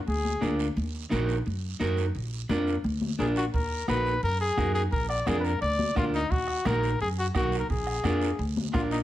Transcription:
0.07 upright bass D2, trumpet G#4, long guiro
0.25 high conga
0.41 upright bass D2, clean electric guitar D4 F4 A#4, high conga, short guiro
0.59 short guiro
0.77 upright bass D#2, long guiro
1.10 upright bass A#1, clean electric guitar D#4 F#4 A#4, high conga, short guiro
1.29 short guiro
1.46 upright bass F#2, long guiro
1.80 upright bass F#2, clean electric guitar D#4 F#4 A#4, high conga, short guiro
1.97 short guiro
2.15 upright bass A#1, long guiro
2.49 upright bass F2, clean electric guitar D4 F4 A#4, high conga, short guiro
2.67 short guiro
2.84 upright bass D2, long guiro
3.01 high conga
3.19 upright bass A#1, clean electric guitar D4 F4 A#4, trumpet G#4, high conga, short guiro
3.36 trumpet F#4, short guiro
3.54 upright bass D#2, trumpet A#4, bombo low, long guiro
3.88 upright bass A#1, clean electric guitar D#4 F#4 A#4, trumpet B4, bombo rim, high conga, short guiro
4.06 short guiro
4.23 upright bass F#2, trumpet A#4, long guiro
4.41 trumpet G#4
4.57 upright bass F#2, clean electric guitar D#4 F#4 A#4, bombo low, bombo rim, high conga, short guiro
4.75 trumpet G#4, short guiro
4.92 upright bass A#1, trumpet A#4, bombo low, long guiro
5.09 trumpet D5, bombo rim
5.26 upright bass F2, clean electric guitar D4 F4 A#4, trumpet G#4, bombo rim, high conga, short guiro
5.40 trumpet B4
5.44 trumpet A#4, short guiro
5.62 upright bass D2, trumpet D5, long guiro
5.79 high conga
5.95 upright bass D2, clean electric guitar D4 F4 A#4, trumpet F4, bombo low, bombo rim, high conga, short guiro
6.14 trumpet D#4, short guiro
6.31 upright bass D#2, trumpet F#4, bombo low, long guiro
6.48 bombo rim
6.65 upright bass A#1, clean electric guitar D#4 F#4 A#4, trumpet A#4, bombo rim, high conga, short guiro
6.83 short guiro
7.00 upright bass F#2, trumpet G#4, long guiro
7.19 trumpet F#4
7.35 upright bass B1, clean electric guitar D#4 F#4 A#4, trumpet F#4, bombo low, bombo rim, high conga, short guiro
7.52 short guiro
7.59 trumpet A#4
7.70 upright bass A#1, trumpet G#4, bombo low, long guiro
7.87 bombo rim
8.03 upright bass F2, clean electric guitar D4 F4 A#4, bombo rim, high conga, short guiro
8.22 short guiro
8.39 upright bass D2, long guiro
8.57 high conga
8.73 upright bass A#1, clean electric guitar D4 F4 A#4, trumpet F4, bombo low, bombo rim, high conga, short guiro
8.91 trumpet D#4, short guiro

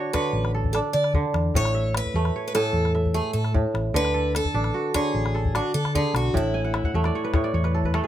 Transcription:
Already playing: kora D3 A3 D4 F#4 A4, steel-string acoustic guitar C#5
0.13 kora D3 C#5, steel-string acoustic guitar B4, calabash thump, calabash click
0.33 fingered electric bass A1
0.45 calabash click
0.55 kora A4, calabash click
0.64 calabash thump
0.73 kora D4, steel-string acoustic guitar A4, calabash click
0.93 fingered electric bass D3, steel-string acoustic guitar D5
1.04 calabash click
1.14 kora D3, calabash thump
1.34 fingered electric bass E2, calabash click
1.54 fingered electric bass A1, kora A2, steel-string acoustic guitar C#5, calabash thump
1.65 calabash click
1.75 kora E5
1.95 steel-string acoustic guitar B4, calabash click
2.06 calabash thump
2.14 fingered electric bass E2, kora A3
2.25 calabash click
2.36 kora C#5
2.48 steel-string acoustic guitar B4
2.55 kora A2 G#5, steel-string acoustic guitar A4, calabash click
2.73 fingered electric bass E2
2.85 calabash click
2.95 kora E5, calabash click
3.05 calabash thump
3.14 kora A3, steel-string acoustic guitar G#4
3.33 fingered electric bass A2, steel-string acoustic guitar A4
3.45 calabash click
3.54 kora A2, calabash thump
3.74 fingered electric bass A1, calabash click
3.94 fingered electric bass D2, kora D3, steel-string acoustic guitar B4, calabash thump
4.05 calabash click
4.14 kora A4
4.35 steel-string acoustic guitar A4, calabash click
4.45 calabash thump
4.54 fingered electric bass A1, kora D4
4.64 calabash click
4.74 kora F#4
4.94 kora D3 C#5, steel-string acoustic guitar G#4, calabash thump, calabash click
5.14 fingered electric bass A1
5.26 calabash click
5.35 kora A4, calabash click
5.45 calabash thump
5.55 kora D4, steel-string acoustic guitar F#4, calabash click
5.74 fingered electric bass D3, steel-string acoustic guitar A4
5.85 calabash click
5.95 kora D3, steel-string acoustic guitar G#4, calabash thump
6.14 fingered electric bass B1, steel-string acoustic guitar F#4, calabash click
6.33 fingered electric bass A1, kora A2, steel-string acoustic guitar E4, calabash thump
6.54 kora G#5
6.64 kora F#5, calabash click
6.74 kora E5, calabash click
6.84 kora F#5, calabash thump
6.94 fingered electric bass E2, kora A3 E5
7.04 kora D5, calabash click
7.15 kora C#5
7.24 kora B4, calabash click
7.34 kora A2 C#5, calabash thump, calabash click
7.44 kora D5, calabash click
7.54 fingered electric bass E2, kora C#5
7.64 kora B4, calabash click
7.74 kora A4
7.84 kora B4, calabash thump
7.94 kora A3 A4, calabash click
8.04 kora G#4

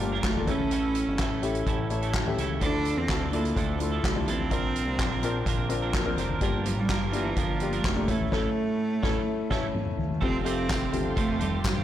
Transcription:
Already playing: analog synth bass G1, clean electric guitar G2 D3 F3 A#3 D4 A#4, upright piano G2 A#2
0.00 upright piano A#3 D4 F4 G4
0.12 clean electric guitar G2 D3 F3 A#3 D4 A#4
0.23 analog synth bass F1, cello A3, kick, snare, clap, closed hi-hat
0.35 upright piano A#3 D4 F4 A4, floor tom
0.47 analog synth bass A1, upright piano A2 A3 C#4 E4 G#4, clean electric guitar A3 C#4 E4, cello C#4, kick, snare, closed hi-hat
0.51 clean electric guitar A4, upright piano A4
0.59 floor tom
0.71 analog synth bass A1, clean electric guitar A2 E3 A3 C#4 E4 A4, closed hi-hat
0.95 closed hi-hat
1.08 analog synth bass G1
1.18 analog synth bass A1, clean electric guitar A2 E3 A3 C#4 E4 A4, kick, snare, clap, closed hi-hat
1.42 upright piano A3 C#4 E4 G4, clean electric guitar A3 C#4 E4 A4, closed hi-hat
1.55 closed hi-hat
1.66 analog synth bass A1, clean electric guitar A2 E3 A3 C#4 E4 A4, kick, closed hi-hat
1.90 upright piano A3 C#4 E4 A4, closed hi-hat
2.02 clean electric guitar A2 E3 A3 C#4 E4 A4, closed hi-hat
2.14 kick, snare, clap, closed hi-hat
2.26 upright piano A3 C#4 E4 G4, floor tom
2.37 analog synth bass C#2, clean electric guitar A3 C#4 E4 A4, snare, closed hi-hat
2.50 floor tom
2.61 analog synth bass D2, clean electric guitar D3 F3 D4 E4 A4, upright piano D3 F3 D4 E4 A4, cello D4, kick, closed hi-hat
2.85 closed hi-hat
2.97 analog synth bass E2, cello C4
3.09 analog synth bass D2, clean electric guitar D3 F3 D4 E4 A4, kick, snare, clap, closed hi-hat
3.32 clean electric guitar F3 D4 E4 A4, cello A#3, upright piano D4 E4 F4 A4, closed hi-hat
3.45 closed hi-hat
3.56 analog synth bass D2, clean electric guitar D3 F3 D4 E4 A4, cello A3, kick, closed hi-hat
3.80 cello A3, upright piano D4 E4 F4 A4, closed hi-hat
3.92 clean electric guitar D3 F3 D4 E4 A4
4.03 analog synth bass C2, cello A3, kick, snare, clap, closed hi-hat
4.15 upright piano D4 E4 F4 G4, floor tom
4.26 analog synth bass A1, clean electric guitar F3 D4 E4 A4, closed hi-hat
4.31 cello C4
4.39 floor tom
4.50 analog synth bass A#1, upright piano A#2 C4 D4 F4 A#4, clean electric guitar A#2 D3 F3 C4 D4 A#4, kick, closed hi-hat
4.76 closed hi-hat
4.86 analog synth bass C2
4.98 analog synth bass A#1, clean electric guitar A#2 D3 F3 C4 D4 A#4, kick, snare, clap, closed hi-hat
5.22 clean electric guitar F3 C4 D4 A#4, upright piano C4 D4 F4 A#4, closed hi-hat
5.46 analog synth bass A#1, clean electric guitar A#2 D3 F3 C4 D4 A#4, kick, closed hi-hat
5.69 upright piano C4 D4 F4 A#4, closed hi-hat
5.82 clean electric guitar A#2 D3 F3 C4 D4 A#4
5.93 kick, snare, clap, closed hi-hat
6.05 upright piano C4 D4 F4 A#4, floor tom
6.17 analog synth bass F1, clean electric guitar F3 C4 D4, snare, closed hi-hat
6.21 clean electric guitar A#4
6.29 floor tom
6.41 analog synth bass G1, upright piano G2 A#3 D4 F4 G4, clean electric guitar G2 D3 F3 A#3 D4 A#4, kick, closed hi-hat
6.66 cello F3, closed hi-hat
6.76 analog synth bass A1, cello G3
6.89 analog synth bass G1, clean electric guitar G2 D3 F3 A#3 D4 A#4, kick, snare, clap, closed hi-hat
7.13 cello E3, clean electric guitar F3 A#3 D4, upright piano A#3 D4 F4 G4, closed hi-hat
7.17 clean electric guitar A#4
7.37 analog synth bass G1, clean electric guitar G2 D3 F3 A#3 D4 A#4, cello F3, kick, closed hi-hat
7.60 upright piano A#3 D4 F4 G4, closed hi-hat
7.72 clean electric guitar G2 D3 F3 A#3 D4 A#4, closed hi-hat
7.84 analog synth bass F1, cello A3, kick, snare, clap, closed hi-hat
7.95 upright piano A#3 D4 F4 G4
8.08 analog synth bass A1, upright piano A2 A3 C#4 E4 A4, clean electric guitar A3 C#4 E4 A4, kick, closed hi-hat
8.20 floor tom
8.31 analog synth bass A1, upright piano A2 A3 C#4 E4 A4, clean electric guitar A2 E3 A3 C#4 E4 A4, cello A3, kick, snare, crash
9.03 analog synth bass A1, upright piano A3 C#4 E4 A4, clean electric guitar A3 C#4 E4 A4, kick, snare
9.50 analog synth bass A1, clean electric guitar A2 E3 A3 C#4 E4 A4, upright piano A3 C#4 E4 A4, kick, snare, crash
9.75 mid tom
9.86 mid tom
9.98 floor tom
10.10 floor tom
10.21 analog synth bass F1, clean electric guitar A3 C4 F4 G4, upright piano A3 C4 F4 G4, cello C4, string section A4 F5 G5 C6, kick, crash
10.44 clean electric guitar F3 A3 C4 F4 G4, upright piano A3 C4 F4 G4, cello C4, closed hi-hat
10.57 analog synth bass F1
10.68 clean electric guitar A3 C4 F4 G4, kick, snare, clap, closed hi-hat, tambourine
10.92 analog synth bass G1, upright piano A3 C4 F4 G4, closed hi-hat, floor tom
11.16 analog synth bass F1, clean electric guitar F3 A3 C4 F4 G4, cello A3, kick, closed hi-hat
11.39 cello G3, clean electric guitar A3 C4 F4 G4, closed hi-hat, floor tom
11.64 analog synth bass G1, cello G3, kick, snare, clap, closed hi-hat, tambourine
11.75 clean electric guitar C4 F4 G4, floor tom

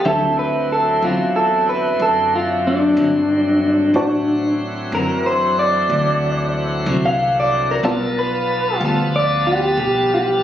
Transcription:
0.04 upright bass D2, clean electric guitar D3 F#3 C4 E4 A4, tonewheel organ E3 G3 C4, horn section F#3 C4 E4 E5, grand piano C4 D4 A4 E5
0.37 tonewheel organ D3 F#3 C4, clean electric guitar B4
0.72 clean electric guitar A4
1.02 upright bass E2, clean electric guitar D3 F#3 C4 E4 F4
1.36 clean electric guitar A4
1.69 clean electric guitar B4
2.00 upright bass F#2, clean electric guitar A4
2.35 clean electric guitar F4
2.67 clean electric guitar D4
2.97 upright bass G2, clean electric guitar D3 F#3 C4 E4
3.94 upright bass A2, horn section D3 D4, tonewheel organ E3 C4 F#4, grand piano F#4 C5 D5 A5
4.92 upright bass F#2, clean electric guitar D3 F#3 C4 E4 A#4
5.26 clean electric guitar C5
5.59 clean electric guitar D5
5.89 upright bass D2
6.86 upright bass C2, clean electric guitar D3 F#3 C4 E4
7.06 clean electric guitar F5
7.40 clean electric guitar D5
7.71 clean electric guitar A#4
7.83 upright bass B1, tonewheel organ F3 B3 A5, horn section F3 B3 F4, clean electric guitar G3 B3 F4 A4, grand piano B3 F4 D5 A5
8.19 clean electric guitar B4
8.81 upright bass D2, clean electric guitar G3 B3 F4 A4
9.16 clean electric guitar D5
9.47 clean electric guitar G4
9.77 upright bass B1, horn section G3 G4, clean electric guitar G4
10.14 clean electric guitar G4

